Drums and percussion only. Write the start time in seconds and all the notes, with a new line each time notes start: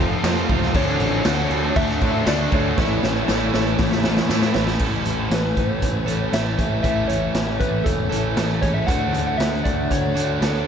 0.24 snare, tambourine, crash
0.49 kick, crash
0.62 snare
0.74 kick, crash
1.00 crash
1.25 snare, tambourine, crash
1.51 crash
1.76 kick, crash
1.89 snare
2.02 kick, crash
2.27 snare, tambourine, crash
2.52 kick, crash
2.78 kick, snare
3.03 snare
3.28 snare, tambourine
3.54 snare
3.79 kick, snare
3.92 snare
4.04 snare
4.17 snare
4.29 snare, tambourine
4.42 snare
4.54 snare
4.67 snare
4.79 kick, crash
5.05 closed hi-hat
5.31 snare, closed hi-hat
5.57 kick, closed hi-hat
5.82 kick, closed hi-hat
6.08 closed hi-hat
6.33 snare, closed hi-hat
6.59 kick, closed hi-hat
6.84 kick, closed hi-hat
7.10 closed hi-hat
7.35 snare, closed hi-hat
7.61 kick, closed hi-hat
7.86 kick, closed hi-hat
8.12 closed hi-hat
8.37 snare, closed hi-hat
8.63 kick, closed hi-hat
8.88 kick, closed hi-hat
9.14 closed hi-hat
9.40 snare, closed hi-hat
9.66 kick, closed hi-hat
9.91 kick, closed hi-hat
10.17 closed hi-hat
10.42 snare, closed hi-hat